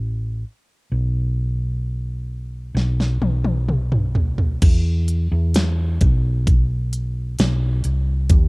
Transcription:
Already playing: A1
0.92 B1
2.75 B1, snare
3.00 snare
3.21 B1, high tom
3.44 high tom
3.69 mid tom
3.92 mid tom
4.15 floor tom
4.38 floor tom
4.62 E2, kick, closed hi-hat, crash
5.08 closed hi-hat
5.32 E2
5.54 snare, closed hi-hat
6.01 B1, kick, closed hi-hat
6.47 kick, closed hi-hat
6.93 closed hi-hat
7.39 B1, snare, closed hi-hat
7.84 C2, closed hi-hat
8.29 D#2, kick, closed hi-hat

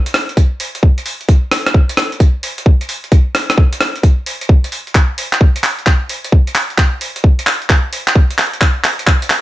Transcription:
0.06 closed hi-hat
0.14 cross-stick, open hi-hat
0.29 closed hi-hat
0.37 kick, closed hi-hat
0.60 open hi-hat
0.75 closed hi-hat
0.83 kick
0.98 closed hi-hat
1.06 open hi-hat
1.21 closed hi-hat
1.29 kick, closed hi-hat
1.51 cross-stick, open hi-hat
1.67 cross-stick, closed hi-hat
1.74 kick
1.89 closed hi-hat
1.97 cross-stick, open hi-hat
2.12 closed hi-hat
2.20 kick, closed hi-hat
2.43 open hi-hat
2.58 closed hi-hat
2.66 kick
2.81 closed hi-hat
2.89 open hi-hat
3.04 closed hi-hat
3.12 kick, closed hi-hat
3.35 cross-stick, open hi-hat
3.50 cross-stick, closed hi-hat
3.58 kick
3.73 closed hi-hat
3.81 cross-stick, open hi-hat
3.96 closed hi-hat
4.03 kick, closed hi-hat
4.26 open hi-hat
4.41 closed hi-hat
4.49 kick
4.64 closed hi-hat
4.72 open hi-hat
4.87 closed hi-hat
4.95 kick, clap, closed hi-hat
5.18 open hi-hat
5.33 clap, closed hi-hat
5.41 kick
5.56 closed hi-hat
5.64 clap, open hi-hat
5.79 closed hi-hat
5.87 kick, clap, closed hi-hat
6.09 open hi-hat
6.24 closed hi-hat
6.32 kick
6.47 closed hi-hat
6.55 clap, open hi-hat
6.70 closed hi-hat
6.78 kick, clap, closed hi-hat
7.01 open hi-hat
7.16 closed hi-hat
7.24 kick
7.39 closed hi-hat
7.47 clap, open hi-hat
7.62 closed hi-hat
7.70 kick, clap, closed hi-hat
7.93 open hi-hat
8.08 clap, closed hi-hat
8.15 kick
8.31 closed hi-hat
8.38 clap, open hi-hat
8.54 closed hi-hat
8.61 kick, clap, closed hi-hat
8.84 clap, open hi-hat
8.99 closed hi-hat
9.07 kick, clap
9.22 closed hi-hat
9.30 clap, open hi-hat

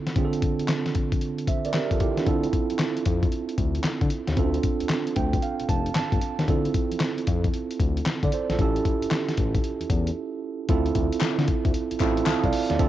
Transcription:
Already playing: D3 C4 E4 F4 A4
0.07 snare, closed hi-hat
0.16 D3 C4 D4 F4 G#4, kick, closed hi-hat
0.25 A4
0.33 closed hi-hat
0.42 kick, closed hi-hat
0.60 closed hi-hat
0.69 snare, clap, closed hi-hat
0.86 snare, closed hi-hat
0.95 kick, closed hi-hat
1.12 kick, closed hi-hat
1.21 closed hi-hat
1.38 closed hi-hat
1.47 C5 E5, kick, closed hi-hat
1.65 A#4 D5, closed hi-hat
1.74 G4 A#4, snare, clap, closed hi-hat
1.91 F4 A4, kick, closed hi-hat
2.00 E4 G4, kick, closed hi-hat
2.17 D4 F4, snare, closed hi-hat
2.26 D2 C4 E4 F4 A4, kick, closed hi-hat
2.44 closed hi-hat
2.53 kick, closed hi-hat
2.70 F2, closed hi-hat
2.79 snare, clap, closed hi-hat
2.97 closed hi-hat
3.05 F2, kick, closed hi-hat
3.23 kick, closed hi-hat
3.32 closed hi-hat
3.49 closed hi-hat
3.58 D2, kick, closed hi-hat
3.75 closed hi-hat
3.84 snare, clap, closed hi-hat
4.01 D3, kick, closed hi-hat
4.10 closed hi-hat
4.27 D#2, snare, closed hi-hat
4.36 D2 C4 C#4 F4 A4, kick, closed hi-hat
4.44 D4
4.54 closed hi-hat
4.63 kick, closed hi-hat
4.80 D2, closed hi-hat
4.89 snare, clap, closed hi-hat
5.07 closed hi-hat
5.16 D2 G5, kick, closed hi-hat
5.33 kick, closed hi-hat
5.42 F5, closed hi-hat
5.60 F1, closed hi-hat
5.69 F1 A5, kick, closed hi-hat
5.86 closed hi-hat
5.95 G1 A5, snare, clap, closed hi-hat
6.12 G1, kick, closed hi-hat
6.21 closed hi-hat
6.39 D#2, snare, closed hi-hat
6.48 D2 C4 E4 F4 A4, kick, closed hi-hat
6.65 closed hi-hat
6.74 kick, closed hi-hat
6.92 F2, closed hi-hat
7.00 snare, clap, closed hi-hat
7.18 closed hi-hat
7.27 F2, kick, closed hi-hat
7.44 kick, closed hi-hat
7.54 closed hi-hat
7.71 closed hi-hat
7.80 D2, kick, closed hi-hat
7.97 closed hi-hat
8.06 snare, clap, closed hi-hat
8.23 D3 D5, kick, closed hi-hat
8.32 A4 C5, closed hi-hat
8.50 A#1 F4 A4, snare, closed hi-hat
8.59 A1 C#4 E4 G4 A4, kick, closed hi-hat
8.76 closed hi-hat
8.85 kick, closed hi-hat
9.02 A1, closed hi-hat
9.11 snare, clap, closed hi-hat
9.29 snare, closed hi-hat
9.37 A1, kick, closed hi-hat
9.55 kick, closed hi-hat
9.64 closed hi-hat
9.81 E2, closed hi-hat
9.90 E2, kick, closed hi-hat
10.07 closed hi-hat
10.69 D2 C4 E4 F4 A4, kick, closed hi-hat
10.86 closed hi-hat
10.95 D2, kick, closed hi-hat
11.13 closed hi-hat
11.21 D3, snare, clap, closed hi-hat
11.38 D3, snare, closed hi-hat
11.48 kick, closed hi-hat
11.65 D2, kick, closed hi-hat
11.74 closed hi-hat
11.91 A1, closed hi-hat
12.00 A1 C4 E4 F4 A4, kick, clap, closed hi-hat
12.17 closed hi-hat
12.26 C2 F5 A5, snare, clap, closed hi-hat
12.44 C2 D5 F5, kick, closed hi-hat
12.53 open hi-hat
12.70 D#2 D5, snare, closed hi-hat
12.79 D2 C4 D4 F4 A4, kick, closed hi-hat

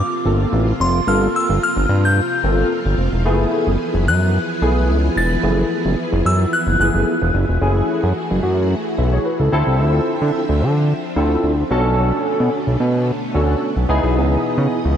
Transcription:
Already playing: C3 F3 A#3 F4 D6
0.25 G1 A#3 C4 F4 A4
0.53 A1
0.80 F1 C6
1.07 G1 A#3 C4 F4 A4 F6
1.36 E6
1.50 G1
1.63 F6
1.77 G1
1.89 G2
2.05 G6
2.44 G1 A#3 C4 F4 A4
2.85 G1
2.98 F1
3.13 E1
3.25 F#1 E3 A3 B3 E4 G#4
3.67 F#1
3.94 F#1
4.07 F#2 F#6
4.62 B1 A3 B3 E4 G#4
4.89 C#2
5.17 E1 A6
5.43 F#1 A3 B3 E4 G#4
5.86 F#1
6.13 F#1
6.25 F#2 E6
6.53 F#6
6.67 F#1
6.80 F#1 A3 B3 E4 G#4 F#6
6.94 F#1
7.22 E1
7.34 F#1
7.49 E1
7.61 F#1 E3 A3 C#4 E4 F#4 G#4
8.03 F#2
8.31 F#1
8.43 F#2
8.98 B1 B4 E5
9.12 G#4 C#5
9.25 F#4 B4
9.39 C#2 E4 A4
9.52 D2 D3 F3 C4 E4 F4 A4 E5
9.67 C2
9.80 D2
10.22 D3
10.49 D2
10.62 D3
11.16 D2 C4 E4 F4 A4
11.43 D2
11.71 B1 B2 D3 A3 B3 C#4 D4 F#4 A4
12.40 B2
12.67 B1
12.80 B2
13.34 D2 C#4 D4 F#4 A4
13.76 B1
13.89 C#2 E3 B3 D#4 E4 G#4 D#5
14.03 B1
14.17 C#2
14.58 C#3
14.85 C#2

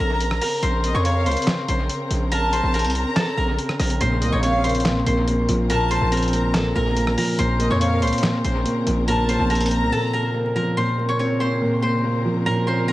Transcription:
Already playing: C#3 C4 A#4 C5 C6
0.00 A#1 A#4 A#5
0.21 closed hi-hat
0.31 cross-stick
0.42 A#4 A#5, open hi-hat
0.63 A#1 C5 C6, closed hi-hat
0.84 D#5, closed hi-hat
0.94 F2 C#5 C#6
1.05 C#5 F5 C#6, closed hi-hat
1.26 C#2 C5 C6, closed hi-hat
1.31 closed hi-hat
1.37 closed hi-hat
1.42 closed hi-hat
1.47 snare, clap
1.68 A#1 C5 C6, closed hi-hat
1.89 closed hi-hat
2.11 A#1, closed hi-hat
2.32 A#4 A5 A#5, closed hi-hat
2.53 C5 C6, closed hi-hat
2.63 A#1
2.74 A#4 A#5, closed hi-hat
2.79 closed hi-hat
2.85 C2, closed hi-hat
2.90 closed hi-hat
2.95 A#5, closed hi-hat
3.16 A4 A5, snare, clap, closed hi-hat
3.37 A#1 A#4 A#5
3.58 closed hi-hat
3.69 cross-stick
3.79 A#1 A#4 A#5, cross-stick, closed hi-hat, open hi-hat
3.90 closed hi-hat
4.01 A#1 A#2 A#4 C5 C6, closed hi-hat
4.22 C2 A#3 D#5, closed hi-hat
4.32 A#1 C#5 C#6
4.43 C4 C#5 F5 C#6, closed hi-hat
4.64 A#3 C5 C6, closed hi-hat
4.69 closed hi-hat
4.75 closed hi-hat
4.80 closed hi-hat
4.85 A#2, snare, clap, closed hi-hat
5.06 A#1 A#3 C5 C6, closed hi-hat
5.28 A#3, closed hi-hat
5.49 A#1 F3, closed hi-hat
5.70 A#2 A#4 A5 A#5, closed hi-hat
5.91 A#3 C5 C6, closed hi-hat
6.01 A#1
6.12 C4 A#4 A#5, closed hi-hat
6.17 closed hi-hat
6.23 closed hi-hat
6.28 closed hi-hat
6.33 A#3 A#5, closed hi-hat
6.54 A#2 A4 A5, snare, clap, closed hi-hat
6.75 A#1 A#3 A#4 A#5
6.96 A#3, closed hi-hat
7.07 cross-stick
7.18 F3 A#4 A#5, open hi-hat
7.39 A#1 A#2 C#3 C4 C5 C6, closed hi-hat
7.59 A#3 D#5, closed hi-hat
7.70 F2 C#5 C#6
7.80 C4 C#5 F5 C#6, closed hi-hat
8.02 C#2 A#3 C5 C6, closed hi-hat
8.07 closed hi-hat
8.13 closed hi-hat
8.18 closed hi-hat
8.23 A#2, snare, clap, closed hi-hat
8.44 A#1 A#3 C5 C6, closed hi-hat
8.65 A#3, closed hi-hat
8.87 A#1 F3, closed hi-hat
9.07 A#2 A#4 A5 A#5, closed hi-hat
9.29 A#3 C5 C6, closed hi-hat
9.39 A#1
9.50 C4 A#4 A#5, closed hi-hat
9.55 closed hi-hat
9.61 closed hi-hat
9.66 closed hi-hat
9.71 A#3 A#5, closed hi-hat
9.82 C2
9.92 A#2 A4 A5
10.13 A#3 A#4 A#5
10.34 A#3
10.56 F3 A#4 A#5
10.77 A#2 C#3 C4 A#4 C5 C6
10.98 A#3
11.09 C#5 C#6
11.19 C4 C#5 C#6
11.40 A#3 C5 C6
11.61 A#2
11.82 A#3 C5 C6
12.04 A#3
12.25 F3
12.46 A#2 A#4 A#5
12.67 A#3 C5 C6
12.88 C4 A#4 A#5

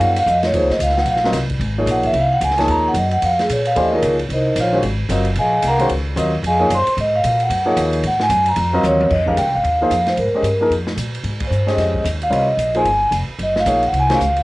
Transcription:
Already playing: F3 A#3 D#4 G#4 C#5
0.00 F#2, ride
0.04 F#5
0.16 F5, ride
0.26 F2 D#5, hi-hat pedal
0.43 C#5, snare, ride
0.52 D#2 F3 A#3 D#4 G#4 C5 C#5, ride
0.62 C#2
0.69 A#1 D#5, snare
0.79 C#2 F5, hi-hat pedal, ride
0.89 snare
0.97 F#5, snare
1.05 A#1, ride
1.10 F5
1.16 snare
1.24 F#3 C4 F4 A#4 D#5, snare
1.32 C2, snare, hi-hat pedal, ride
1.50 kick, ride
1.59 G#1, ride
1.78 F3 A#3 D#4 G#4 C#5
1.86 A#1, hi-hat pedal, ride
1.91 F#5
2.03 E5, kick, ride
2.13 C2, ride
2.19 F5
2.33 F#5
2.41 C#2 G#5, hi-hat pedal, ride
2.50 snare
2.58 F3 A#3 D#4 G#4 C#5 A5, snare, ride
2.68 D#2 A#5, ride
2.88 F#5
2.94 F#2, hi-hat pedal, ride
2.98 D#5
3.11 F#5, ride
3.22 F2 F5, ride
3.39 G#4, snare, ride
3.49 A#2 C#5, hi-hat pedal, ride
3.65 F5, ride
3.75 D#2 E3 A3 D4 G4 C5 D#5, ride
3.92 F3 A#3 D#4 G#4 A#4 C#5
4.02 C#2, hi-hat pedal, ride
4.19 ride
4.29 C2, ride
4.33 D#4 A#4 C5 D#5
4.56 A#1, hi-hat pedal, ride
4.60 F4 C5 C#5 F5
4.73 D#3 G#3 C#4 F#4 C5
4.83 G#1, ride
5.09 F#1 F#3 C4 F4 A#4 D#5, hi-hat pedal, ride
5.25 ride
5.36 A#1 D#5 G#5, ride
5.40 G#4 F5
5.62 C2, hi-hat pedal, ride
5.67 A#4 F5 F#5 A#5
5.79 D#3 G#3 C#4 F#4 C5, ride
5.89 C#2, ride
6.16 D#2 F#3 C4 F4 A#4 D#5, hi-hat pedal, ride
6.43 F2, ride
6.47 G#4 D#5 F5 G#5
6.60 F3 A#3 D#4 G#4 C#5
6.70 F#2, hi-hat pedal, ride
6.75 C5 C6
6.87 muted upright bass stroke, ride
6.97 G#2 D#5, ride
7.16 F5
7.24 A#2, hi-hat pedal, ride
7.40 F#5, ride
7.50 F#2, ride
7.66 F3 A#3 D#4 G#4 C#5
7.76 D#2, hi-hat pedal, ride
7.93 ride
8.03 G#2 F#5, ride
8.20 G#5, snare
8.29 F#2, hi-hat pedal, ride
8.46 A#5, ride
8.56 F2, ride
8.73 F#3 C4 F4 A#4 D#5
8.83 D#2 C#5, hi-hat pedal, high tom
9.01 high tom
9.10 F2 D#5, kick, crash
9.26 D#3 G#3 C#4 G4 A#4 F5, kick
9.37 C#2 G5, hi-hat pedal, ride
9.46 C2
9.55 G#1 F5
9.63 D#2, ride
9.81 F3 A#3 D#4 G#4 C5
9.90 F2, hi-hat pedal, ride
10.06 C5, snare, ride
10.17 G#2 A#4, ride
10.32 G#3 C#4 G4 C5 D#5, muted upright bass stroke
10.42 G2, hi-hat pedal, ride
10.60 F3 A#3 D#4 G#4 A#4
10.70 F2, ride
10.87 snare
10.96 A#2, hi-hat pedal, ride
11.15 ride
11.24 G#2, ride
11.40 kick, ride
11.47 G2 C5
11.52 hi-hat pedal
11.66 G#3 C#4 G4 C5 D#5, snare, ride
11.71 D#5
11.77 F2, snare, ride
11.94 kick
12.04 D#2, hi-hat pedal, ride
12.22 F5, ride
12.30 C2 G3 C4 F4 A#4 C#5 D#5, ride
12.57 A#1, hi-hat pedal, ride
12.75 F3 A#3 D#4 G#4 C5 G#5, ride
12.84 G1, ride
13.11 F1, hi-hat pedal, ride
13.28 muted upright bass stroke
13.39 F#1, ride
13.43 D#5
13.56 F5, snare
13.66 A#1 F3 A#3 D#4 G#4 C#5, hi-hat pedal, ride
13.83 F#5, ride
13.92 C2, ride
13.99 G#5
14.10 D#3 G#3 C#4 F#4 C5, snare, ride
14.15 F5
14.20 C#2, hi-hat pedal
14.36 ride

